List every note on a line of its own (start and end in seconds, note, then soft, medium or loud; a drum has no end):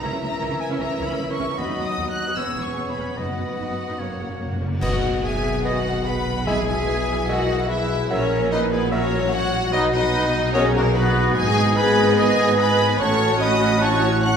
0.00 0.06 C#2 medium
0.00 0.06 C#3 medium
0.00 1.55 E3 medium
0.00 0.07 C#4 medium
0.00 1.55 E4 medium
0.00 0.07 E4 medium
0.00 1.55 A#4 medium
0.00 1.55 E5 medium
0.00 1.54 E5 medium
0.00 0.21 A#5 medium
0.11 0.15 C#3 medium
0.11 0.16 C#4 medium
0.21 0.26 C#2 medium
0.21 0.25 C#3 medium
0.21 0.25 A#3 soft
0.21 0.26 C#4 soft
0.21 0.61 A#5 medium
0.21 0.60 A#5 medium
0.30 0.34 C#3 medium
0.30 0.35 C#4 medium
0.40 0.45 C#2 medium
0.40 0.44 C#3 medium
0.40 0.45 C#4 medium
0.40 0.45 E4 medium
0.50 0.54 C#3 medium
0.50 0.55 C#4 medium
0.60 0.78 G#5 medium
0.60 0.68 G#5 medium
0.69 0.73 C#3 medium
0.69 0.75 C#4 medium
0.69 0.74 E4 medium
0.79 0.84 C#2 medium
0.79 0.83 C#3 medium
0.79 0.84 C#4 medium
0.79 1.05 A#5 medium
0.79 1.06 A#5 medium
0.89 0.93 C#3 medium
0.89 0.94 A#3 medium
0.89 0.94 C#4 medium
0.99 1.04 C#2 medium
0.99 1.03 C#3 medium
0.99 1.04 C#4 medium
0.99 1.05 E4 medium
1.06 1.12 C#3 medium
1.06 1.12 B5 medium
1.06 1.32 B5 medium
1.10 1.14 C#4 medium
1.18 1.23 C#2 medium
1.18 1.22 C#3 medium
1.18 1.24 A#3 medium
1.18 1.24 C#4 medium
1.28 1.32 C#3 medium
1.28 1.33 C#4 medium
1.28 1.33 E4 medium
1.32 1.60 C#6 medium
1.32 1.58 C#6 medium
1.38 1.43 C#2 medium
1.38 1.42 C#3 medium
1.38 1.43 C#4 medium
1.48 1.52 C#3 medium
1.48 1.53 A#3 soft
1.48 1.53 C#4 medium
1.58 1.62 D#2 medium
1.58 1.63 D#2 medium
1.58 2.33 F#3 medium
1.58 1.63 B3 medium
1.58 2.33 D#4 medium
1.58 2.37 F#4 medium
1.58 1.63 F#4 medium
1.58 2.32 D#5 medium
1.58 2.35 D#5 medium
1.58 1.86 B5 medium
1.58 1.85 B5 medium
1.67 1.71 D#2 medium
1.67 1.73 B3 soft
1.67 1.73 D#4 medium
1.77 1.81 D#2 medium
1.77 1.82 D#2 medium
1.77 1.83 B3 soft
1.84 1.91 D#2 medium
1.84 2.10 D#6 medium
1.89 1.93 B3 medium
1.89 1.93 D#4 soft
1.96 2.00 D#2 medium
1.96 2.02 D#2 medium
1.96 2.03 B3 medium
1.96 2.03 F#4 medium
2.06 2.10 D#2 soft
2.06 2.12 B3 soft
2.06 2.12 D#4 soft
2.10 2.36 F#6 medium
2.10 2.39 F#6 medium
2.25 2.30 D#2 medium
2.25 2.31 B3 medium
2.25 2.31 F#4 medium
2.35 2.40 E1 soft
2.35 2.39 E2 soft
2.35 3.16 B3 medium
2.35 2.41 B3 medium
2.35 3.17 B3 medium
2.35 2.41 C#4 medium
2.35 3.18 C#4 medium
2.35 3.16 G#4 medium
2.35 3.19 C#5 medium
2.35 3.18 C#5 medium
2.35 2.63 E6 medium
2.35 2.65 E6 medium
2.45 2.50 E2 soft
2.45 2.51 B3 medium
2.55 2.61 E1 medium
2.55 2.60 E2 medium
2.55 2.61 B3 medium
2.55 2.61 E4 medium
2.62 2.70 E2 soft
2.62 2.90 C#6 medium
2.62 2.91 C#6 medium
2.67 2.71 B3 medium
2.67 2.71 C#4 medium
2.75 2.81 E1 soft
2.75 2.80 E2 soft
2.75 2.81 B3 medium
2.86 2.90 E2 medium
2.86 2.92 B3 medium
2.86 2.92 E4 medium
2.86 3.19 B5 medium
2.90 3.17 B5 medium
2.96 3.02 E1 soft
2.96 3.00 E2 soft
2.96 3.02 B3 soft
2.96 3.02 C#4 medium
3.06 3.11 E2 soft
3.06 3.12 B3 soft
3.17 3.22 F#1 medium
3.17 3.21 F#2 medium
3.17 3.75 F#2 medium
3.17 4.02 B3 medium
3.17 3.22 B3 medium
3.17 3.98 B3 medium
3.17 3.98 D#4 medium
3.17 3.22 D#4 medium
3.17 4.61 F#4 medium
3.17 3.98 B4 medium
3.17 4.00 D#5 medium
3.17 4.61 F#5 medium
3.27 3.32 F#2 soft
3.27 3.33 B3 soft
3.37 3.43 F#1 soft
3.37 3.42 F#2 soft
3.37 3.43 F#3 soft
3.37 3.43 B3 soft
3.48 3.52 F#2 soft
3.48 3.53 B3 soft
3.58 3.63 F#1 medium
3.58 3.62 F#2 medium
3.58 3.63 B3 medium
3.58 3.63 D#4 medium
3.68 3.72 F#2 soft
3.68 3.73 B3 soft
3.88 3.93 F#2 medium
3.88 3.94 B3 medium
3.88 3.94 D#4 medium
3.99 4.04 F#1 soft
3.99 4.03 F#2 soft
3.99 4.06 F#2 soft
3.99 4.04 A#3 soft
3.99 4.61 A#3 medium
3.99 4.61 A#3 soft
3.99 4.60 C#4 medium
3.99 4.04 C#4 soft
3.99 4.60 C#5 medium
3.99 4.61 C#5 soft
4.07 4.13 F#2 soft
4.07 4.14 A#3 soft
4.14 4.21 F#2 soft
4.19 4.24 F#1 medium
4.19 4.23 F#2 medium
4.19 4.29 F#2 soft
4.19 4.24 A#3 medium
4.19 4.24 F#4 medium
4.29 4.34 F#2 soft
4.29 4.36 F#2 soft
4.29 4.34 A#3 soft
4.29 4.34 C#4 soft
4.37 4.45 F#1 soft
4.37 4.44 F#2 medium
4.37 4.44 F#2 soft
4.37 4.44 A#3 medium
4.45 4.52 F#2 medium
4.50 4.54 F#2 medium
4.50 4.59 F#2 medium
4.50 4.55 A#3 medium
4.50 4.55 F#4 medium
4.60 4.66 F#1 soft
4.60 4.64 F#2 soft
4.60 4.67 F#2 medium
4.60 4.65 A#3 soft
4.60 4.65 C#4 soft
4.68 4.75 F#2 medium
4.68 4.75 F#2 soft
4.68 4.76 A#3 soft
4.81 8.07 B1 medium
4.81 8.06 B2 medium
4.81 5.40 B2 loud
4.81 6.43 D#3 medium
4.81 6.43 B3 medium
4.81 4.97 B3 medium
4.81 5.20 F#4 medium
4.81 5.21 F#4 medium
4.81 5.21 B4 medium
4.81 4.96 D#5 medium
4.81 5.25 D#5 medium
4.81 5.20 F#5 loud
4.81 concert bass drum medium
4.81 crash medium
5.23 5.64 G#4 medium
5.23 6.04 G#4 medium
5.23 5.64 G#4 medium
5.23 5.64 E5 medium
5.23 5.65 G#5 loud
5.65 5.79 B3 medium
5.65 6.05 F#4 medium
5.65 6.06 F#4 medium
5.65 6.05 D#5 medium
5.65 5.79 D#5 medium
5.65 6.05 F#5 loud
6.05 6.47 F#4 medium
6.05 6.46 B4 medium
6.05 6.48 F#5 medium
6.05 6.47 B5 loud
6.46 7.04 B2 loud
6.46 8.07 E3 medium
6.46 6.61 G#3 medium
6.46 9.69 E4 medium
6.46 6.87 G#4 medium
6.46 6.66 G#4 loud
6.46 6.66 E5 medium
6.46 6.61 E5 medium
6.46 6.66 G#5 loud
6.67 7.28 G#4 loud
6.67 7.28 G#4 medium
6.67 7.31 E5 loud
6.67 7.28 G#5 loud
6.87 7.27 B4 loud
7.29 7.43 G#3 medium
7.29 7.69 F#4 medium
7.29 7.70 A#4 medium
7.29 7.69 D#5 loud
7.29 7.43 E5 medium
7.29 7.70 F#5 loud
7.68 8.10 E4 medium
7.68 8.11 E4 medium
7.68 8.09 G#4 medium
7.68 8.09 B4 medium
7.68 8.10 E5 loud
8.09 9.73 A#1 medium
8.09 9.73 A#2 medium
8.09 8.25 F#3 medium
8.09 11.32 F#3 medium
8.09 8.51 C#4 loud
8.09 8.52 C#4 loud
8.09 8.90 A#4 loud
8.09 8.50 A#4 medium
8.09 8.51 C#5 loud
8.09 8.25 E5 medium
8.51 8.71 D#4 loud
8.51 8.61 D#4 medium
8.51 8.73 B4 loud
8.51 8.59 D#5 loud
8.71 8.91 B3 loud
8.71 8.92 B3 medium
8.71 8.93 G#4 medium
8.71 8.91 B4 loud
8.92 9.06 F#3 medium
8.92 9.32 C#4 medium
8.92 9.33 C#4 loud
8.92 9.71 F#4 loud
8.92 9.32 A#4 loud
8.92 9.31 C#5 loud
8.92 9.06 E5 medium
9.32 9.73 F#4 loud
9.32 9.72 F#4 loud
9.32 9.74 C#5 loud
9.32 9.73 F#5 loud
9.72 11.33 B1 loud
9.72 11.32 B2 loud
9.72 9.87 F#3 medium
9.72 9.93 D#4 loud
9.72 9.92 D#4 loud
9.72 12.96 D#4 medium
9.72 10.52 F#4 loud
9.72 9.93 B4 loud
9.72 9.87 D#5 loud
9.72 9.81 D#5 loud
9.93 10.53 D#4 loud
9.93 10.27 B4 loud
9.93 10.53 D#5 loud
10.54 10.69 F#3 loud
10.54 10.75 C#4 loud
10.54 10.95 G#4 loud
10.54 10.60 A#4 loud
10.54 10.62 C#5 loud
10.54 10.69 D#5 loud
10.75 10.84 A#3 loud
10.75 10.95 A#3 loud
10.75 10.81 F#4 loud
10.75 10.95 A#4 loud
10.94 11.36 B3 loud
10.94 11.35 B3 loud
10.94 11.76 F#4 loud
10.94 11.35 F#4 loud
10.94 11.36 B4 loud
11.35 13.00 G#1 loud
11.35 12.99 G#2 loud
11.35 12.96 B3 loud
11.35 11.76 G#4 loud
11.35 11.77 G#4 loud
11.35 11.76 D#5 loud
11.35 12.96 D#5 loud
11.35 11.75 G#5 loud
11.76 12.17 G#4 loud
11.76 12.18 B4 loud
11.76 12.17 B4 loud
11.76 12.17 G#5 loud
11.76 12.17 B5 loud
12.17 12.59 G#4 loud
12.17 12.58 G#4 loud
12.17 12.82 B4 loud
12.17 12.58 D#5 loud
12.17 12.58 G#5 loud
12.59 12.99 B4 loud
12.59 13.00 B4 loud
12.59 12.99 G#5 loud
12.59 12.99 B5 loud
12.99 14.37 A1 loud
12.99 14.37 A2 medium
12.99 14.37 C#4 loud
12.99 14.37 C#4 medium
12.99 14.37 F#4 loud
12.99 13.39 A4 loud
12.99 13.40 C#5 loud
12.99 14.37 F#5 loud
12.99 13.39 A5 loud
12.99 13.40 C#6 loud
13.39 13.80 F#4 loud
13.39 13.81 D#5 loud
13.39 13.83 B5 loud
13.39 13.81 D#6 loud
13.80 14.37 E4 medium
13.80 14.22 C#5 loud
13.80 14.21 A5 loud
13.80 14.23 C#6 loud
14.22 14.37 F#5 loud
14.22 14.37 C#6 loud
14.22 14.37 F#6 loud